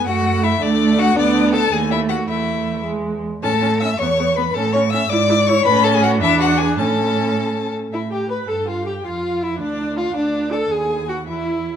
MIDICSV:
0, 0, Header, 1, 5, 480
1, 0, Start_track
1, 0, Tempo, 374065
1, 78, Time_signature, 6, 3, 24, 8
1, 15096, End_track
2, 0, Start_track
2, 0, Title_t, "Violin"
2, 0, Program_c, 0, 40
2, 74, Note_on_c, 0, 78, 107
2, 562, Note_on_c, 0, 76, 112
2, 581, Note_off_c, 0, 78, 0
2, 791, Note_on_c, 0, 74, 116
2, 810, Note_off_c, 0, 76, 0
2, 1273, Note_on_c, 0, 78, 127
2, 1293, Note_off_c, 0, 74, 0
2, 1504, Note_off_c, 0, 78, 0
2, 1512, Note_on_c, 0, 74, 111
2, 1962, Note_off_c, 0, 74, 0
2, 1969, Note_on_c, 0, 81, 114
2, 2204, Note_on_c, 0, 80, 102
2, 2223, Note_off_c, 0, 81, 0
2, 2445, Note_off_c, 0, 80, 0
2, 2453, Note_on_c, 0, 76, 100
2, 2552, Note_off_c, 0, 76, 0
2, 2678, Note_on_c, 0, 78, 101
2, 2781, Note_off_c, 0, 78, 0
2, 2929, Note_on_c, 0, 76, 81
2, 3652, Note_off_c, 0, 76, 0
2, 4398, Note_on_c, 0, 81, 107
2, 4852, Note_off_c, 0, 81, 0
2, 4873, Note_on_c, 0, 88, 91
2, 5105, Note_off_c, 0, 88, 0
2, 5113, Note_on_c, 0, 85, 96
2, 5596, Note_on_c, 0, 83, 96
2, 5615, Note_off_c, 0, 85, 0
2, 5822, Note_on_c, 0, 81, 95
2, 5841, Note_off_c, 0, 83, 0
2, 6064, Note_on_c, 0, 85, 100
2, 6083, Note_off_c, 0, 81, 0
2, 6288, Note_on_c, 0, 88, 115
2, 6307, Note_off_c, 0, 85, 0
2, 6538, Note_on_c, 0, 86, 121
2, 6557, Note_off_c, 0, 88, 0
2, 7014, Note_on_c, 0, 85, 127
2, 7033, Note_off_c, 0, 86, 0
2, 7243, Note_off_c, 0, 85, 0
2, 7251, Note_on_c, 0, 83, 124
2, 7488, Note_on_c, 0, 81, 114
2, 7507, Note_off_c, 0, 83, 0
2, 7631, Note_on_c, 0, 80, 127
2, 7650, Note_off_c, 0, 81, 0
2, 7729, Note_off_c, 0, 80, 0
2, 7736, Note_on_c, 0, 78, 114
2, 7833, Note_off_c, 0, 78, 0
2, 7971, Note_on_c, 0, 76, 127
2, 8206, Note_off_c, 0, 76, 0
2, 8213, Note_on_c, 0, 78, 113
2, 8433, Note_on_c, 0, 80, 115
2, 8453, Note_off_c, 0, 78, 0
2, 8684, Note_off_c, 0, 80, 0
2, 8692, Note_on_c, 0, 81, 96
2, 9899, Note_off_c, 0, 81, 0
2, 10162, Note_on_c, 0, 76, 52
2, 10392, Note_off_c, 0, 76, 0
2, 10402, Note_on_c, 0, 79, 53
2, 10501, Note_off_c, 0, 79, 0
2, 10667, Note_on_c, 0, 83, 59
2, 10906, Note_on_c, 0, 81, 56
2, 10925, Note_off_c, 0, 83, 0
2, 11152, Note_on_c, 0, 77, 52
2, 11171, Note_off_c, 0, 81, 0
2, 11378, Note_on_c, 0, 79, 57
2, 11397, Note_off_c, 0, 77, 0
2, 11608, Note_on_c, 0, 77, 53
2, 11627, Note_off_c, 0, 79, 0
2, 12082, Note_off_c, 0, 77, 0
2, 12091, Note_on_c, 0, 76, 58
2, 12318, Note_off_c, 0, 76, 0
2, 12330, Note_on_c, 0, 74, 72
2, 12788, Note_off_c, 0, 74, 0
2, 12806, Note_on_c, 0, 77, 67
2, 13028, Note_off_c, 0, 77, 0
2, 13035, Note_on_c, 0, 74, 66
2, 13503, Note_on_c, 0, 81, 62
2, 13523, Note_off_c, 0, 74, 0
2, 13744, Note_on_c, 0, 80, 67
2, 13763, Note_off_c, 0, 81, 0
2, 14218, Note_on_c, 0, 78, 63
2, 14237, Note_off_c, 0, 80, 0
2, 14451, Note_off_c, 0, 78, 0
2, 14459, Note_on_c, 0, 76, 46
2, 15096, Note_off_c, 0, 76, 0
2, 15096, End_track
3, 0, Start_track
3, 0, Title_t, "Violin"
3, 0, Program_c, 1, 40
3, 79, Note_on_c, 1, 66, 101
3, 555, Note_on_c, 1, 64, 97
3, 574, Note_off_c, 1, 66, 0
3, 777, Note_off_c, 1, 64, 0
3, 784, Note_on_c, 1, 62, 98
3, 1265, Note_on_c, 1, 66, 110
3, 1284, Note_off_c, 1, 62, 0
3, 1493, Note_on_c, 1, 62, 102
3, 1512, Note_off_c, 1, 66, 0
3, 1962, Note_on_c, 1, 69, 105
3, 1981, Note_off_c, 1, 62, 0
3, 2200, Note_off_c, 1, 69, 0
3, 2208, Note_on_c, 1, 68, 85
3, 2307, Note_off_c, 1, 68, 0
3, 2454, Note_on_c, 1, 64, 82
3, 2553, Note_off_c, 1, 64, 0
3, 2692, Note_on_c, 1, 66, 82
3, 2929, Note_off_c, 1, 66, 0
3, 2937, Note_on_c, 1, 64, 76
3, 3656, Note_off_c, 1, 64, 0
3, 4413, Note_on_c, 1, 69, 99
3, 4886, Note_on_c, 1, 76, 93
3, 4905, Note_off_c, 1, 69, 0
3, 5116, Note_on_c, 1, 73, 97
3, 5135, Note_off_c, 1, 76, 0
3, 5595, Note_on_c, 1, 71, 89
3, 5614, Note_off_c, 1, 73, 0
3, 5830, Note_on_c, 1, 69, 110
3, 5849, Note_off_c, 1, 71, 0
3, 6064, Note_off_c, 1, 69, 0
3, 6072, Note_on_c, 1, 73, 98
3, 6169, Note_off_c, 1, 73, 0
3, 6299, Note_on_c, 1, 76, 106
3, 6541, Note_off_c, 1, 76, 0
3, 6568, Note_on_c, 1, 74, 113
3, 7036, Note_on_c, 1, 73, 116
3, 7055, Note_off_c, 1, 74, 0
3, 7254, Note_on_c, 1, 71, 127
3, 7273, Note_off_c, 1, 73, 0
3, 7485, Note_off_c, 1, 71, 0
3, 7493, Note_on_c, 1, 69, 98
3, 7543, Note_off_c, 1, 69, 0
3, 7618, Note_on_c, 1, 68, 102
3, 7749, Note_on_c, 1, 66, 106
3, 7768, Note_off_c, 1, 68, 0
3, 7972, Note_off_c, 1, 66, 0
3, 7980, Note_on_c, 1, 64, 108
3, 8215, Note_on_c, 1, 66, 99
3, 8234, Note_off_c, 1, 64, 0
3, 8467, Note_on_c, 1, 68, 92
3, 8486, Note_off_c, 1, 66, 0
3, 8712, Note_off_c, 1, 68, 0
3, 8726, Note_on_c, 1, 69, 98
3, 9917, Note_off_c, 1, 69, 0
3, 10183, Note_on_c, 1, 64, 65
3, 10278, Note_off_c, 1, 64, 0
3, 10425, Note_on_c, 1, 67, 64
3, 10644, Note_off_c, 1, 67, 0
3, 10651, Note_on_c, 1, 71, 61
3, 10748, Note_off_c, 1, 71, 0
3, 10884, Note_on_c, 1, 69, 57
3, 11124, Note_off_c, 1, 69, 0
3, 11138, Note_on_c, 1, 65, 61
3, 11370, Note_off_c, 1, 65, 0
3, 11375, Note_on_c, 1, 67, 65
3, 11470, Note_off_c, 1, 67, 0
3, 11618, Note_on_c, 1, 65, 70
3, 12100, Note_on_c, 1, 64, 76
3, 12119, Note_off_c, 1, 65, 0
3, 12318, Note_off_c, 1, 64, 0
3, 12326, Note_on_c, 1, 62, 73
3, 12802, Note_on_c, 1, 65, 83
3, 12821, Note_off_c, 1, 62, 0
3, 13029, Note_off_c, 1, 65, 0
3, 13037, Note_on_c, 1, 62, 83
3, 13513, Note_on_c, 1, 69, 77
3, 13532, Note_off_c, 1, 62, 0
3, 13754, Note_on_c, 1, 68, 71
3, 13773, Note_off_c, 1, 69, 0
3, 14225, Note_off_c, 1, 68, 0
3, 14233, Note_on_c, 1, 66, 63
3, 14329, Note_off_c, 1, 66, 0
3, 14484, Note_on_c, 1, 64, 65
3, 15096, Note_off_c, 1, 64, 0
3, 15096, End_track
4, 0, Start_track
4, 0, Title_t, "Viola"
4, 0, Program_c, 2, 41
4, 78, Note_on_c, 2, 57, 80
4, 787, Note_off_c, 2, 57, 0
4, 794, Note_on_c, 2, 57, 97
4, 1480, Note_off_c, 2, 57, 0
4, 1488, Note_on_c, 2, 59, 91
4, 2163, Note_off_c, 2, 59, 0
4, 2210, Note_on_c, 2, 57, 84
4, 2929, Note_off_c, 2, 57, 0
4, 2941, Note_on_c, 2, 57, 65
4, 3652, Note_off_c, 2, 57, 0
4, 3660, Note_on_c, 2, 56, 67
4, 4146, Note_off_c, 2, 56, 0
4, 4397, Note_on_c, 2, 61, 77
4, 4496, Note_off_c, 2, 61, 0
4, 4639, Note_on_c, 2, 61, 61
4, 4738, Note_off_c, 2, 61, 0
4, 4890, Note_on_c, 2, 61, 66
4, 4987, Note_off_c, 2, 61, 0
4, 5145, Note_on_c, 2, 59, 72
4, 5238, Note_off_c, 2, 59, 0
4, 5376, Note_on_c, 2, 59, 71
4, 5471, Note_off_c, 2, 59, 0
4, 5611, Note_on_c, 2, 59, 61
4, 5706, Note_off_c, 2, 59, 0
4, 5846, Note_on_c, 2, 61, 81
4, 5942, Note_off_c, 2, 61, 0
4, 6092, Note_on_c, 2, 61, 65
4, 6185, Note_off_c, 2, 61, 0
4, 6330, Note_on_c, 2, 61, 76
4, 6422, Note_off_c, 2, 61, 0
4, 6563, Note_on_c, 2, 64, 84
4, 6656, Note_off_c, 2, 64, 0
4, 6787, Note_on_c, 2, 64, 77
4, 6882, Note_off_c, 2, 64, 0
4, 7038, Note_on_c, 2, 64, 82
4, 7130, Note_off_c, 2, 64, 0
4, 7268, Note_on_c, 2, 61, 106
4, 7934, Note_off_c, 2, 61, 0
4, 7980, Note_on_c, 2, 62, 101
4, 8705, Note_on_c, 2, 61, 81
4, 8724, Note_off_c, 2, 62, 0
4, 9930, Note_off_c, 2, 61, 0
4, 10171, Note_on_c, 2, 64, 54
4, 10268, Note_off_c, 2, 64, 0
4, 10410, Note_on_c, 2, 67, 48
4, 10642, Note_off_c, 2, 67, 0
4, 10649, Note_on_c, 2, 71, 54
4, 10881, Note_on_c, 2, 69, 57
4, 10900, Note_off_c, 2, 71, 0
4, 11127, Note_on_c, 2, 65, 55
4, 11146, Note_off_c, 2, 69, 0
4, 11354, Note_off_c, 2, 65, 0
4, 11362, Note_on_c, 2, 67, 52
4, 11597, Note_on_c, 2, 65, 59
4, 11616, Note_off_c, 2, 67, 0
4, 12073, Note_on_c, 2, 64, 61
4, 12092, Note_off_c, 2, 65, 0
4, 12296, Note_off_c, 2, 64, 0
4, 12303, Note_on_c, 2, 62, 67
4, 12786, Note_on_c, 2, 65, 58
4, 12805, Note_off_c, 2, 62, 0
4, 13012, Note_off_c, 2, 65, 0
4, 13020, Note_on_c, 2, 62, 67
4, 13494, Note_on_c, 2, 69, 74
4, 13513, Note_off_c, 2, 62, 0
4, 13739, Note_on_c, 2, 68, 68
4, 13758, Note_off_c, 2, 69, 0
4, 14220, Note_off_c, 2, 68, 0
4, 14227, Note_on_c, 2, 66, 51
4, 14325, Note_off_c, 2, 66, 0
4, 14465, Note_on_c, 2, 64, 61
4, 15096, Note_off_c, 2, 64, 0
4, 15096, End_track
5, 0, Start_track
5, 0, Title_t, "Cello"
5, 0, Program_c, 3, 42
5, 73, Note_on_c, 3, 42, 74
5, 771, Note_off_c, 3, 42, 0
5, 783, Note_on_c, 3, 38, 89
5, 1480, Note_off_c, 3, 38, 0
5, 1494, Note_on_c, 3, 38, 89
5, 2166, Note_off_c, 3, 38, 0
5, 2210, Note_on_c, 3, 39, 79
5, 2929, Note_off_c, 3, 39, 0
5, 2940, Note_on_c, 3, 40, 64
5, 4135, Note_off_c, 3, 40, 0
5, 4386, Note_on_c, 3, 45, 80
5, 5036, Note_off_c, 3, 45, 0
5, 5120, Note_on_c, 3, 40, 75
5, 5759, Note_off_c, 3, 40, 0
5, 5834, Note_on_c, 3, 45, 85
5, 6467, Note_off_c, 3, 45, 0
5, 6539, Note_on_c, 3, 44, 94
5, 7171, Note_off_c, 3, 44, 0
5, 7251, Note_on_c, 3, 45, 97
5, 7978, Note_on_c, 3, 40, 98
5, 7997, Note_off_c, 3, 45, 0
5, 8695, Note_on_c, 3, 45, 82
5, 8714, Note_off_c, 3, 40, 0
5, 9925, Note_off_c, 3, 45, 0
5, 10163, Note_on_c, 3, 45, 48
5, 10839, Note_off_c, 3, 45, 0
5, 10892, Note_on_c, 3, 43, 40
5, 11588, Note_off_c, 3, 43, 0
5, 11596, Note_on_c, 3, 41, 49
5, 12298, Note_on_c, 3, 38, 62
5, 12317, Note_off_c, 3, 41, 0
5, 13001, Note_off_c, 3, 38, 0
5, 13008, Note_on_c, 3, 38, 55
5, 13721, Note_off_c, 3, 38, 0
5, 13732, Note_on_c, 3, 39, 59
5, 14451, Note_on_c, 3, 40, 51
5, 14471, Note_off_c, 3, 39, 0
5, 15096, Note_off_c, 3, 40, 0
5, 15096, End_track
0, 0, End_of_file